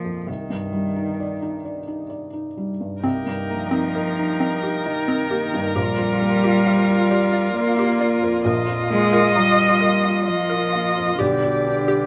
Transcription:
Already playing: A#1 F3 A#3 F4 D#5
0.05 F2
0.27 C2 D#3
0.50 G2
0.73 G3
0.96 D#4
1.20 D5
1.42 D#4
1.65 D5
1.87 D#4
2.10 D5
2.33 D#4
2.57 G3
2.81 G2
3.02 C2 A#3 C4 D#4 G4 A#4 D#5
3.26 G2
3.50 F3 A#3
3.71 C4 D#4
3.95 A#4 D#5
4.19 D#4
4.40 C4 D#5
4.63 D#4 G4
4.85 D#3 D#4 D#5
5.08 C4 D#4
5.31 A#3 G4
5.54 G2 D#4
5.75 A#1 G3 F4 G4 D5
5.98 F2
6.22 A#3
6.44 F4 G4
6.66 D5 F5
6.89 F4
7.11 G4 D5
7.32 F4 D5
7.54 A#3 A#4 D5
7.76 F4 G4
7.99 A#3 D5
8.22 F2 A#4
8.45 A#1 A#3 F4 A#4 D#5
8.67 F2
8.90 G#3 A#3
9.12 F4 A#4
9.35 G3 D#5 A#5
9.59 F4
9.81 A#4 D#5
10.04 F5
10.27 F3 F4 D#5
10.50 F4 A#4
10.73 A#3 F5
10.96 F2 D#5
11.18 B1 D3 G3 G4 B4 D5
11.43 B2
11.67 D4
11.88 G4

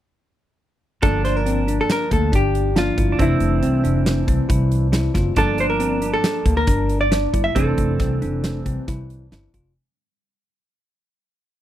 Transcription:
1.02 G1 F3 A#3 D4 A4, kick, closed hi-hat
1.25 C5, snare, closed hi-hat
1.36 A#4
1.46 C4, closed hi-hat
1.68 D4, closed hi-hat
1.81 A4
1.90 A#4, snare, closed hi-hat
2.11 D2 A#3 A4, kick, closed hi-hat
2.32 G1 D4 G4, kick, closed hi-hat
2.55 closed hi-hat
2.75 F3 A#3 D4 F4, snare, closed hi-hat
2.97 G1 E4, kick, closed hi-hat
3.12 D4
3.19 F1 E3 A3 C4 D4 E4, kick, closed hi-hat
3.40 F1, closed hi-hat
3.62 C2 C4, closed hi-hat
3.84 F1 D4, closed hi-hat
4.06 snare, closed hi-hat
4.28 C2 C4, kick, closed hi-hat
4.49 C2 E4, kick, closed hi-hat
4.72 closed hi-hat
4.92 E4, snare, closed hi-hat
5.14 F#1 F4, kick, snare, closed hi-hat
5.36 G1 F3 A#3 D4 A4, kick, closed hi-hat
5.58 C5, closed hi-hat
5.70 A#4
5.80 C4, closed hi-hat
6.02 D4, closed hi-hat
6.14 A4
6.24 snare, closed hi-hat
6.46 D2 A#3, kick, closed hi-hat
6.57 A#4
6.67 G1 D4, kick, closed hi-hat
6.89 closed hi-hat
7.01 D5
7.11 D4, snare, closed hi-hat
7.33 G1 E4, kick, closed hi-hat
7.44 E5
7.55 F1 E3 A3 C4 D4 A4, kick, closed hi-hat
7.78 F1, kick, closed hi-hat
7.99 C2 C4, kick, snare, closed hi-hat
8.22 F1 D4, closed hi-hat
8.44 snare, closed hi-hat
8.65 C2 C4 G4, kick, closed hi-hat
8.88 C2 E4, kick, snare, closed hi-hat
9.10 closed hi-hat
9.31 G1 E4, snare, closed hi-hat
9.54 F1 F4, kick, closed hi-hat

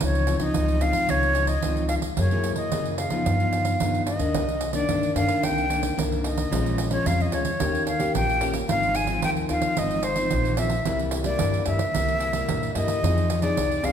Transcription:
0.01 C#2 C#3 F3 C4 D#4 C#5, pandeiro
0.15 pandeiro
0.27 F3 C4 D#4, pandeiro
0.40 C#2 F3 C4 D#4 D#5, pandeiro
0.54 C#2 G#2, pandeiro
0.68 pandeiro
0.81 F3 C4 D#4 F5, pandeiro
0.93 C#3, pandeiro
1.09 C#2 C#3 C#5, pandeiro
1.23 pandeiro
1.35 F3 C4 D#4, pandeiro
1.47 D#5, pandeiro
1.62 C#2 G#2 F3 C4 D#4, pandeiro
1.77 pandeiro
1.88 F5, pandeiro
2.02 D#2, pandeiro
2.17 F#2 F#3 A#3 E4 G#4 C#5, pandeiro
2.31 A#3 E4 G#4, pandeiro
2.44 pandeiro
2.56 F#2 D#5, pandeiro
2.72 F#2 C#3 A#3 E4 G#4, pandeiro
2.85 pandeiro
2.97 F5, pandeiro
3.10 E2 F3 B3 D#4, pandeiro
3.26 G2, pandeiro
3.40 F3 B3 D#4, pandeiro
3.53 pandeiro
3.65 pandeiro
3.80 G2 F3 B3 D#4, pandeiro
3.94 pandeiro
4.07 D#5, pandeiro
4.19 D#2 D#3 A#3 D4, pandeiro
4.34 C2 C3, pandeiro
4.49 pandeiro
4.61 pandeiro
4.73 D#3 A#3 D4 D5, pandeiro
4.89 G2 D#3 A#3 D4, pandeiro
5.03 pandeiro
5.15 G2 D#3 A#3 D4 F5, pandeiro
5.28 pandeiro
5.43 C2 C3 G5, pandeiro
5.58 pandeiro
5.70 D#3 A#3 D4, pandeiro
5.83 pandeiro
5.97 C2 G2 D#3 A#3 D4, pandeiro
6.12 pandeiro
6.24 D#5, pandeiro
6.37 pandeiro
6.51 A#1 A#2 F3 G#3 C#4, pandeiro
6.66 pandeiro
6.78 pandeiro
6.90 F3 G#3 C#4 C#5, pandeiro
7.05 F2 F5, pandeiro
7.20 D#5, pandeiro
7.32 D2 F3 G#3 C#4 C#5, pandeiro
7.45 pandeiro
7.60 D#2 D#3 A#3 C#4 G4, pandeiro
7.75 pandeiro
7.87 F5, pandeiro
8.00 A#3 C#4 G4, pandeiro
8.15 A#1 A#2 G5, pandeiro
8.29 pandeiro
8.41 A#3 C#4 G4, pandeiro
8.54 pandeiro
8.69 G#1 G#2 F3 C4 D#4 F5, pandeiro
8.83 pandeiro
8.95 G#5, pandeiro
9.07 F3 C4 D#4, pandeiro
9.22 D#2 D#3 G5, pandeiro
9.37 pandeiro
9.49 D#2 F3 C4 D#4 F5, pandeiro
9.62 pandeiro
9.77 G#1 G#2 F3 C4 D#4 D#5, pandeiro
9.91 pandeiro
10.03 C5, pandeiro
10.16 F3 C4 D#4, pandeiro
10.30 A#1 D#3, pandeiro
10.45 pandeiro
10.57 F3 C4 D#4 E5, pandeiro
10.69 pandeiro
10.85 C2 C3 G3 A#3 E4, pandeiro
10.99 pandeiro
11.11 pandeiro
11.24 G3 A#3 E4 D5, pandeiro
11.39 G2, pandeiro
11.54 pandeiro
11.66 G2 G3 A#3 E4 E5, pandeiro
11.79 pandeiro
11.95 C2 C3 G3 A#3 E4, pandeiro
12.09 pandeiro
12.20 pandeiro
12.33 G3 A#3 E4, pandeiro
12.48 G2 A#2, pandeiro
12.63 pandeiro
12.75 G2 G3 A#3 E4 D#5, pandeiro
12.88 pandeiro
13.03 F2 F3 C4 D#4 G#4, pandeiro
13.18 pandeiro
13.30 pandeiro
13.42 C4 D#4 G#4 D5, pandeiro
13.57 C2 C3, pandeiro
13.71 pandeiro
13.83 C2 C4 D#4 G#4 F5, pandeiro

